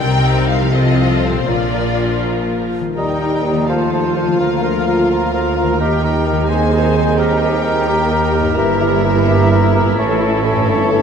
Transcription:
Already playing: harp C3 G3 D#4 A#4
0.02 double bass section C2, cello section C3, viola section G3 C4, violin section D#4 A#4 G5
0.51 violin section F5
0.57 harp C3
0.61 harp F3
0.66 harp F4
0.70 harp A4
0.74 viola section F3 C4, violin section F4 A4 D#5
1.23 violin section C5
1.30 harp A#2
1.34 harp F3
1.39 harp F4
1.43 harp A#4
1.48 double bass section A#1, cello section A#2, viola section F3 F4, violin section F4 A#4 D5
2.80 harp D#3
2.85 harp G3
2.89 harp D#4
2.94 double bass section D#2, cello section D#2, bassoon G3, french horn section A#3 G4, viola section D#4, clarinet D#4, harp A#4, violin section A#4, oboe D#5, flute A#5
2.98 violin section G5
3.21 bassoon G3, clarinet D#4, oboe D#5, flute A#5
3.45 bassoon G3, clarinet D#4, oboe D#5, flute A#5
3.52 harp D#3
3.56 harp F3
3.61 harp F4
3.65 bassoon F3, french horn section A3 F4, viola section F4, harp A4
3.69 clarinet F4, violin section A4 F5, oboe C5, flute A5
3.93 bassoon F3, clarinet F4, oboe C5, flute A5
4.16 bassoon F3, clarinet F4, oboe C5, flute A5
4.23 harp D3
4.27 harp F3
4.32 harp F4
4.36 double bass section D2, clarinet F4, harp A#4, oboe A#4
4.40 cello section D2, bassoon F3, french horn section A#3, violin section A#4, flute A#5
4.63 bassoon F3, clarinet F4, oboe A#4, flute A#5
4.87 bassoon F3, clarinet F4, oboe A#4, flute A#5
5.10 bassoon F3, clarinet F4, oboe A#4, flute A#5
5.34 bassoon F3, clarinet F4, oboe A#4, flute A#5
5.57 bassoon F3, clarinet F4, oboe A#4, flute A#5
5.63 harp D#3
5.67 harp G3
5.72 harp D#4
5.76 harp A#4
5.80 cello section D#2, double bass section D#2, bassoon D#3, viola section D#4, clarinet G4, french horn section G4, oboe A#4, violin section G5, flute A#5
6.04 bassoon D#3, clarinet G4, oboe A#4, flute A#5
6.26 bassoon D#3, clarinet G4, oboe A#4, flute A#5
6.32 harp D#3
6.37 harp G#3
6.41 harp D#4
6.45 clarinet G#4, harp C5, flute G#5
6.50 bassoon D#3, french horn section C4 G#4, oboe C5, violin section C5 G#5
6.72 bassoon D#3, clarinet G#4, oboe C5, flute G#5
6.95 bassoon D#3, clarinet G#4, oboe C5, flute G#5
7.01 harp D#3
7.06 harp G3
7.10 harp D#4
7.15 harp A#4, flute A#5
7.19 bassoon D#3, clarinet G4, oboe A#4, violin section A#4 G5
7.41 bassoon D#3, clarinet G4, oboe A#4, flute A#5
7.64 bassoon D#3, clarinet G4, oboe A#4, flute A#5
7.88 bassoon D#3, french horn section A#3 G4, clarinet G4, oboe A#4, flute A#5
8.11 bassoon D#3, clarinet G4, oboe A#4, flute A#5
8.34 bassoon D#3, clarinet G4, oboe A#4, flute A#5
8.39 harp G2
8.44 harp A#3
8.49 harp E4
8.53 harp A#4
8.57 double bass section G1, cello section G2, bassoon E3, french horn section E4, viola section E4, clarinet G4, oboe A#4, violin section E5, flute A#5
8.81 bassoon E3, clarinet G4, oboe A#4, flute A#5
9.04 bassoon E3, clarinet G4, oboe A#4, flute A#5
9.28 bassoon E3, clarinet G4, oboe A#4, flute A#5
9.52 bassoon E3, clarinet G4, oboe A#4, flute A#5
9.75 bassoon E3, clarinet G4, oboe A#4, flute A#5
9.81 harp A2
9.85 harp C#4
9.90 harp E4
9.94 harp A4
9.98 double bass section A1, cello section A2, bassoon E3, french horn section A3 C#4, violin section A4 C#5, clarinet A4, oboe C#5, flute A5
10.21 bassoon E3, clarinet A4, oboe C#5, flute A5
10.44 bassoon E3, clarinet A4, oboe C#5, flute A5
10.51 harp G2
10.56 harp C#4
10.60 harp E4
10.65 harp A4, flute A5
10.69 double bass section G1, cello section G2, bassoon E3, clarinet A4, oboe C#5
10.93 bassoon E3, clarinet A4, oboe C#5, flute A5

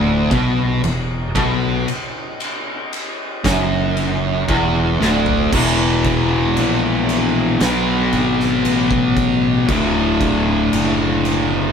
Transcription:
Already playing: fretless electric bass D1, distorted electric guitar D2
0.31 fretless electric bass B1, distorted electric guitar B2, kick, ride
0.83 fretless electric bass E1, distorted electric guitar E2, ride
1.35 fretless electric bass B1, distorted electric guitar B2, kick, ride
1.88 ride
2.40 ride
2.93 ride
3.44 fretless electric bass F#1, distorted electric guitar F#2, kick, snare, ride
3.97 ride
4.48 fretless electric bass E1, distorted electric guitar E2, kick, ride
5.00 fretless electric bass D1, distorted electric guitar D2, snare
5.26 floor tom
5.52 fretless electric bass E1, distorted electric guitar E2 B2 E3, kick, crash
6.04 kick, crash
6.57 fretless electric bass A#1, crash
7.09 crash
7.59 fretless electric bass B1, distorted electric guitar B2 F#3 B3, snare, crash
8.12 fretless electric bass G#1, crash
8.40 snare
8.65 fretless electric bass A1, crash
8.91 kick
9.17 kick, crash
9.68 fretless electric bass D1, distorted electric guitar D2 A2 D3, kick, crash
10.21 kick, crash
10.73 fretless electric bass F#1, crash
11.25 crash

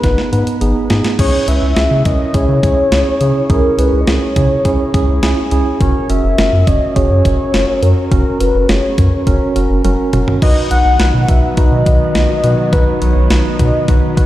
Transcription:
Already playing: soft synth lead B4
0.03 analog synth bass G#1, tine electric piano B3 D#4 B4, kick, snare, closed hi-hat
0.18 snare
0.32 analog synth bass G#2, tine electric piano B3 D#4 B4, closed hi-hat
0.47 closed hi-hat
0.61 analog synth bass G#1, tine electric piano B3 D#4 G#4, closed hi-hat
0.90 analog synth bass G#2, tine electric piano B3 D#4 G#4, snare, closed hi-hat
1.04 snare, closed hi-hat
1.19 analog synth bass C#2, tine electric piano C#4 E4 G#4, soft synth lead C#5, kick, closed hi-hat, crash
1.48 analog synth bass C#2, tine electric piano C#4 E4 B4, soft synth lead E5, closed hi-hat
1.62 analog synth bass C#2
1.76 analog synth bass C#2, tine electric piano C#4 E4 G#4, snare, closed hi-hat
1.91 analog synth bass C#3
2.05 analog synth bass C#2, tine electric piano C#4 E4 A#4, soft synth lead D#5, kick, closed hi-hat
2.34 analog synth bass C#2, tine electric piano C#4 E4 G#4, soft synth lead C#5, kick, closed hi-hat
2.49 analog synth bass C#3
2.63 analog synth bass C#2, tine electric piano C#4 E4 G#4, kick, closed hi-hat
2.92 analog synth bass C#2, tine electric piano C#4 E4 G#4, snare, closed hi-hat
3.21 analog synth bass C#3, tine electric piano C#4 E4 G#4, closed hi-hat
3.50 analog synth bass C#2, tine electric piano C#4 E4 G#4, soft synth lead A#4, kick, closed hi-hat
3.78 analog synth bass C#2, tine electric piano C#4 E4 G#4, soft synth lead B4, closed hi-hat
3.93 analog synth bass C#2
4.01 soft synth lead D#5
4.07 analog synth bass C#2, tine electric piano C#4 E4 G#4, soft synth lead C#5, snare, closed hi-hat
4.36 analog synth bass C#3, tine electric piano C#4 E4 G#4, kick, closed hi-hat
4.65 analog synth bass C#2, tine electric piano C#4 E4 G#4, kick, closed hi-hat
4.94 analog synth bass C#2, tine electric piano C#4 E4 G#4, kick, closed hi-hat
5.09 analog synth bass C#2
5.23 analog synth bass C#2, tine electric piano C#4 E4 G#4, snare, closed hi-hat
5.51 analog synth bass C#2, tine electric piano C#4 E4 G#4, closed hi-hat
5.81 analog synth bass F#1, tine electric piano C#4 F#4 A#4, soft synth lead C#5, kick, closed hi-hat
6.09 analog synth bass F#1, tine electric piano C#4 F#4 A#4, soft synth lead E5, closed hi-hat
6.24 analog synth bass F#1
6.38 analog synth bass F#1, tine electric piano C#4 F#4 A#4, snare, closed hi-hat
6.53 analog synth bass F#2
6.67 analog synth bass F#1, tine electric piano C#4 F#4 C#5, soft synth lead D#5, kick, closed hi-hat
6.96 analog synth bass F#1, tine electric piano C#4 F#4 G#4, soft synth lead C#5, kick, closed hi-hat
7.11 analog synth bass F#2
7.25 analog synth bass F#1, tine electric piano C#4 F#4 A#4, kick, closed hi-hat
7.54 analog synth bass F#1, tine electric piano C#4 F#4 A#4, snare, closed hi-hat
7.82 analog synth bass F#2, tine electric piano C#4 F#4 A#4, soft synth lead A#4, closed hi-hat
8.11 analog synth bass F#1, tine electric piano C#4 F#4 A#4, kick, closed hi-hat
8.40 analog synth bass F#1, tine electric piano C#4 F#4 A#4, soft synth lead B4, closed hi-hat
8.55 analog synth bass F#1
8.69 analog synth bass F#1, tine electric piano C#4 F#4 G#4, soft synth lead C#5, snare, closed hi-hat
8.98 analog synth bass F#2, tine electric piano C#4 F#4 A#4, kick, closed hi-hat
9.27 analog synth bass F#1, tine electric piano C#4 F#4 A#4, kick, closed hi-hat
9.56 analog synth bass F#1, tine electric piano C#4 F#4 A#4, closed hi-hat
9.70 analog synth bass F#1
9.85 analog synth bass F#1, tine electric piano C#4 F#4 A#4, closed hi-hat, high tom
10.13 analog synth bass F#1, tine electric piano C#4 F#4 A#4, closed hi-hat, mid tom
10.28 floor tom
10.42 analog synth bass B1, string machine D#3 F#3 B3, tine electric piano D#4 F#4 B4, soft synth lead D#5, kick, crash
10.71 analog synth bass B1, tine electric piano D#4 F#4 B4, soft synth lead F#5, closed hi-hat
10.85 analog synth bass B1
11.00 analog synth bass B1, tine electric piano D#4 F#4 B4, snare, closed hi-hat
11.14 analog synth bass B2
11.28 analog synth bass B1, tine electric piano D#4 F#4 B4, soft synth lead E5, kick, closed hi-hat
11.57 analog synth bass B1, tine electric piano D#4 F#4 B4, soft synth lead D#5, kick, closed hi-hat
11.72 analog synth bass B2
11.86 analog synth bass B1, tine electric piano D#4 F#4 B4, kick, closed hi-hat
12.15 analog synth bass B1, tine electric piano D#4 F#4 B4, snare, closed hi-hat
12.44 analog synth bass B2, tine electric piano D#4 F#4 B4, closed hi-hat
12.72 analog synth bass B1, tine electric piano D#4 F#4 B4, soft synth lead B4, kick, closed hi-hat
13.01 analog synth bass B1, tine electric piano D#4 F#4 B4, soft synth lead C#5, closed hi-hat
13.16 analog synth bass B1
13.30 analog synth bass B1, tine electric piano D#4 F#4 B4, soft synth lead D#5, snare, closed hi-hat
13.59 analog synth bass B2, tine electric piano D#4 F#4 B4, kick, closed hi-hat
13.88 analog synth bass B1, tine electric piano D#4 F#4 B4, kick, closed hi-hat
14.17 analog synth bass B1, tine electric piano D#4 F#4 B4, kick, closed hi-hat

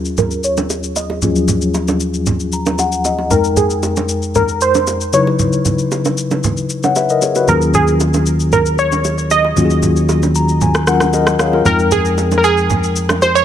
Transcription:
Already playing: tine electric piano D#2 F#3 C#4 F4 G#4, synth pluck G#4
0.05 shaker
0.17 synth pluck A#4, low conga, shaker
0.31 shaker
0.44 synth pluck C#5, shaker
0.57 low bongo, shaker
0.70 high bongo, shaker
0.83 shaker
0.96 synth pluck D#5, high bongo, shaker
1.10 high bongo
1.21 tine electric piano D#2 F3 C#4 F4 G#4, low conga, shaker
1.28 tine electric piano F#3
1.36 shaker
1.48 low conga, shaker
1.62 shaker
1.74 high bongo, shaker
1.88 low bongo, shaker
2.00 shaker
2.14 shaker
2.26 low conga, shaker
2.40 shaker
2.52 tine electric piano A#5, shaker
2.66 low bongo, shaker
2.78 tine electric piano F#5, high bongo, shaker
2.92 shaker
3.05 tine electric piano D#5, high bongo, shaker
3.18 high bongo
3.30 tine electric piano F2 G#3 D#4 A#4 G5, synth pluck A#4, low conga, shaker
3.44 shaker
3.57 synth pluck G#4, low conga, shaker
3.70 shaker
3.83 high bongo, shaker
3.96 low bongo, shaker
4.09 shaker
4.22 shaker
4.35 synth pluck A#4, low conga, shaker
4.48 shaker
4.61 synth pluck C5, shaker
4.74 low bongo, shaker
4.87 high bongo, shaker
5.01 shaker
5.13 tine electric piano C#3 F#3 D#4 E4 B4, synth pluck C#5, high bongo, shaker
5.27 high bongo
5.39 low conga, shaker
5.53 shaker
5.65 low bongo, low conga, shaker
5.79 shaker
5.91 high bongo, shaker
6.05 low bongo, shaker
6.17 shaker
6.31 low bongo, shaker
6.43 low conga, shaker
6.57 shaker
6.70 shaker
6.83 tine electric piano C#5 F#5, low bongo, shaker
6.96 tine electric piano B4 E5, high bongo, shaker
7.09 tine electric piano A#4 D#5, shaker
7.22 tine electric piano G#4 C#5, high bongo, shaker
7.35 tine electric piano F#4 B4, high bongo, shaker
7.48 fingered electric bass D#2, tine electric piano F#3 C#4 F4 G#4, synth pluck A#4, low conga, shaker
7.61 shaker
7.74 synth pluck G#4, low conga, shaker
7.87 shaker
8.00 high bongo, shaker
8.14 low bongo, shaker
8.26 shaker
8.40 shaker
8.52 synth pluck A#4, low conga, shaker
8.66 shaker
8.79 synth pluck C#5, shaker
8.92 low bongo, shaker
9.04 high bongo, shaker
9.18 shaker
9.31 synth pluck D#5, high bongo, shaker
9.45 high bongo
9.56 fingered electric bass D#2, tine electric piano F#3 C#4 F4 F#4, low conga, shaker
9.65 tine electric piano G#4
9.70 shaker
9.83 low conga, shaker
9.96 shaker
10.09 high bongo, shaker
10.23 low bongo, shaker
10.35 tine electric piano A#5, shaker
10.48 shaker
10.61 tine electric piano G#5, low conga, shaker
10.75 cross-stick, shaker
10.87 tine electric piano F#3 C#4 F4 A#4 F#5, cross-stick, shaker
11.00 cross-stick, low bongo, shaker
11.13 tine electric piano A#4 D#5, high bongo, shaker
11.27 cross-stick, shaker
11.39 tine electric piano G#4 C#5 F5, cross-stick, high bongo, shaker
11.53 tine electric piano F4 A#4, high bongo
11.65 fingered electric bass F2, tine electric piano G#3 D#4 A#4 G5, synth pluck A#4, low conga, shaker
11.79 shaker
11.91 synth pluck G#4, low conga, shaker
12.05 shaker
12.18 high bongo, shaker
12.31 low bongo, shaker
12.38 synth pluck A#4
12.44 synth pluck G#4, shaker
12.57 shaker
12.70 low conga, shaker
12.83 shaker
12.96 shaker
13.09 cross-stick, low bongo, shaker
13.22 synth pluck C5, high bongo, shaker
13.35 synth pluck C#5, shaker

